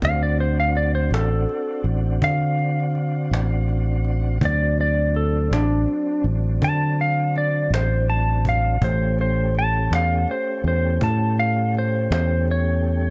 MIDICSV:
0, 0, Header, 1, 5, 480
1, 0, Start_track
1, 0, Tempo, 732601
1, 9, Time_signature, 12, 3, 24, 8
1, 8584, End_track
2, 0, Start_track
2, 0, Title_t, "Electric slide guitar"
2, 0, Program_c, 0, 29
2, 32, Note_on_c, 0, 77, 108
2, 137, Note_off_c, 0, 77, 0
2, 148, Note_on_c, 0, 74, 92
2, 256, Note_off_c, 0, 74, 0
2, 265, Note_on_c, 0, 72, 90
2, 374, Note_off_c, 0, 72, 0
2, 390, Note_on_c, 0, 77, 99
2, 497, Note_off_c, 0, 77, 0
2, 502, Note_on_c, 0, 74, 85
2, 613, Note_off_c, 0, 74, 0
2, 622, Note_on_c, 0, 72, 88
2, 733, Note_off_c, 0, 72, 0
2, 745, Note_on_c, 0, 69, 104
2, 1205, Note_off_c, 0, 69, 0
2, 1467, Note_on_c, 0, 77, 110
2, 2876, Note_off_c, 0, 77, 0
2, 2917, Note_on_c, 0, 74, 82
2, 3140, Note_off_c, 0, 74, 0
2, 3150, Note_on_c, 0, 74, 92
2, 3376, Note_off_c, 0, 74, 0
2, 3384, Note_on_c, 0, 69, 86
2, 3613, Note_off_c, 0, 69, 0
2, 3627, Note_on_c, 0, 62, 91
2, 4088, Note_off_c, 0, 62, 0
2, 4353, Note_on_c, 0, 81, 99
2, 4578, Note_off_c, 0, 81, 0
2, 4593, Note_on_c, 0, 77, 85
2, 4818, Note_off_c, 0, 77, 0
2, 4833, Note_on_c, 0, 74, 79
2, 5058, Note_off_c, 0, 74, 0
2, 5074, Note_on_c, 0, 72, 89
2, 5299, Note_off_c, 0, 72, 0
2, 5304, Note_on_c, 0, 81, 83
2, 5533, Note_off_c, 0, 81, 0
2, 5560, Note_on_c, 0, 77, 84
2, 5782, Note_off_c, 0, 77, 0
2, 5794, Note_on_c, 0, 72, 84
2, 6018, Note_off_c, 0, 72, 0
2, 6035, Note_on_c, 0, 72, 85
2, 6259, Note_off_c, 0, 72, 0
2, 6281, Note_on_c, 0, 81, 97
2, 6502, Note_off_c, 0, 81, 0
2, 6520, Note_on_c, 0, 77, 88
2, 6741, Note_off_c, 0, 77, 0
2, 6756, Note_on_c, 0, 72, 84
2, 6979, Note_off_c, 0, 72, 0
2, 6996, Note_on_c, 0, 72, 84
2, 7219, Note_off_c, 0, 72, 0
2, 7231, Note_on_c, 0, 81, 82
2, 7456, Note_off_c, 0, 81, 0
2, 7466, Note_on_c, 0, 77, 95
2, 7693, Note_off_c, 0, 77, 0
2, 7722, Note_on_c, 0, 72, 85
2, 7941, Note_off_c, 0, 72, 0
2, 7957, Note_on_c, 0, 72, 90
2, 8178, Note_off_c, 0, 72, 0
2, 8199, Note_on_c, 0, 73, 93
2, 8584, Note_off_c, 0, 73, 0
2, 8584, End_track
3, 0, Start_track
3, 0, Title_t, "Tonewheel organ"
3, 0, Program_c, 1, 16
3, 14, Note_on_c, 1, 60, 69
3, 15, Note_on_c, 1, 62, 64
3, 20, Note_on_c, 1, 66, 64
3, 2872, Note_off_c, 1, 60, 0
3, 2872, Note_off_c, 1, 62, 0
3, 2875, Note_off_c, 1, 66, 0
3, 2896, Note_on_c, 1, 60, 70
3, 2900, Note_on_c, 1, 54, 70
3, 2900, Note_on_c, 1, 62, 71
3, 5751, Note_off_c, 1, 60, 0
3, 5753, Note_off_c, 1, 54, 0
3, 5753, Note_off_c, 1, 62, 0
3, 5780, Note_on_c, 1, 57, 70
3, 5780, Note_on_c, 1, 67, 63
3, 5782, Note_on_c, 1, 61, 70
3, 8584, Note_off_c, 1, 57, 0
3, 8584, Note_off_c, 1, 61, 0
3, 8584, Note_off_c, 1, 67, 0
3, 8584, End_track
4, 0, Start_track
4, 0, Title_t, "Fingered electric bass"
4, 0, Program_c, 2, 33
4, 15, Note_on_c, 2, 38, 100
4, 707, Note_off_c, 2, 38, 0
4, 724, Note_on_c, 2, 33, 91
4, 949, Note_off_c, 2, 33, 0
4, 1205, Note_on_c, 2, 33, 85
4, 1430, Note_off_c, 2, 33, 0
4, 1452, Note_on_c, 2, 50, 82
4, 2147, Note_off_c, 2, 50, 0
4, 2169, Note_on_c, 2, 33, 86
4, 2867, Note_off_c, 2, 33, 0
4, 2890, Note_on_c, 2, 38, 104
4, 3587, Note_off_c, 2, 38, 0
4, 3611, Note_on_c, 2, 33, 82
4, 3834, Note_off_c, 2, 33, 0
4, 4088, Note_on_c, 2, 33, 88
4, 4313, Note_off_c, 2, 33, 0
4, 4336, Note_on_c, 2, 50, 81
4, 5030, Note_off_c, 2, 50, 0
4, 5047, Note_on_c, 2, 33, 86
4, 5746, Note_off_c, 2, 33, 0
4, 5775, Note_on_c, 2, 33, 101
4, 6469, Note_off_c, 2, 33, 0
4, 6491, Note_on_c, 2, 40, 84
4, 6714, Note_off_c, 2, 40, 0
4, 6970, Note_on_c, 2, 40, 80
4, 7193, Note_off_c, 2, 40, 0
4, 7216, Note_on_c, 2, 45, 83
4, 7909, Note_off_c, 2, 45, 0
4, 7931, Note_on_c, 2, 40, 86
4, 8584, Note_off_c, 2, 40, 0
4, 8584, End_track
5, 0, Start_track
5, 0, Title_t, "Cajon"
5, 14, Note_on_c, 9, 36, 97
5, 79, Note_off_c, 9, 36, 0
5, 251, Note_on_c, 9, 38, 32
5, 317, Note_off_c, 9, 38, 0
5, 496, Note_on_c, 9, 38, 38
5, 561, Note_off_c, 9, 38, 0
5, 747, Note_on_c, 9, 38, 103
5, 812, Note_off_c, 9, 38, 0
5, 977, Note_on_c, 9, 38, 38
5, 1043, Note_off_c, 9, 38, 0
5, 1216, Note_on_c, 9, 38, 35
5, 1282, Note_off_c, 9, 38, 0
5, 1454, Note_on_c, 9, 36, 99
5, 1519, Note_off_c, 9, 36, 0
5, 1697, Note_on_c, 9, 38, 36
5, 1762, Note_off_c, 9, 38, 0
5, 1933, Note_on_c, 9, 38, 37
5, 1999, Note_off_c, 9, 38, 0
5, 2185, Note_on_c, 9, 38, 111
5, 2251, Note_off_c, 9, 38, 0
5, 2417, Note_on_c, 9, 38, 33
5, 2482, Note_off_c, 9, 38, 0
5, 2651, Note_on_c, 9, 38, 30
5, 2717, Note_off_c, 9, 38, 0
5, 2892, Note_on_c, 9, 36, 103
5, 2957, Note_off_c, 9, 36, 0
5, 3131, Note_on_c, 9, 38, 32
5, 3197, Note_off_c, 9, 38, 0
5, 3371, Note_on_c, 9, 38, 35
5, 3436, Note_off_c, 9, 38, 0
5, 3622, Note_on_c, 9, 38, 103
5, 3687, Note_off_c, 9, 38, 0
5, 3853, Note_on_c, 9, 38, 36
5, 3918, Note_off_c, 9, 38, 0
5, 4096, Note_on_c, 9, 38, 32
5, 4162, Note_off_c, 9, 38, 0
5, 4336, Note_on_c, 9, 36, 101
5, 4402, Note_off_c, 9, 36, 0
5, 4586, Note_on_c, 9, 38, 32
5, 4652, Note_off_c, 9, 38, 0
5, 4819, Note_on_c, 9, 38, 37
5, 4884, Note_off_c, 9, 38, 0
5, 5069, Note_on_c, 9, 38, 112
5, 5135, Note_off_c, 9, 38, 0
5, 5301, Note_on_c, 9, 38, 35
5, 5366, Note_off_c, 9, 38, 0
5, 5536, Note_on_c, 9, 36, 73
5, 5602, Note_off_c, 9, 36, 0
5, 5777, Note_on_c, 9, 36, 94
5, 5843, Note_off_c, 9, 36, 0
5, 6020, Note_on_c, 9, 38, 35
5, 6085, Note_off_c, 9, 38, 0
5, 6256, Note_on_c, 9, 38, 36
5, 6322, Note_off_c, 9, 38, 0
5, 6505, Note_on_c, 9, 38, 105
5, 6571, Note_off_c, 9, 38, 0
5, 6734, Note_on_c, 9, 38, 33
5, 6800, Note_off_c, 9, 38, 0
5, 6975, Note_on_c, 9, 38, 35
5, 7041, Note_off_c, 9, 38, 0
5, 7215, Note_on_c, 9, 36, 106
5, 7280, Note_off_c, 9, 36, 0
5, 7451, Note_on_c, 9, 38, 31
5, 7517, Note_off_c, 9, 38, 0
5, 7695, Note_on_c, 9, 38, 34
5, 7761, Note_off_c, 9, 38, 0
5, 7941, Note_on_c, 9, 38, 122
5, 8006, Note_off_c, 9, 38, 0
5, 8174, Note_on_c, 9, 38, 31
5, 8240, Note_off_c, 9, 38, 0
5, 8413, Note_on_c, 9, 38, 33
5, 8479, Note_off_c, 9, 38, 0
5, 8584, End_track
0, 0, End_of_file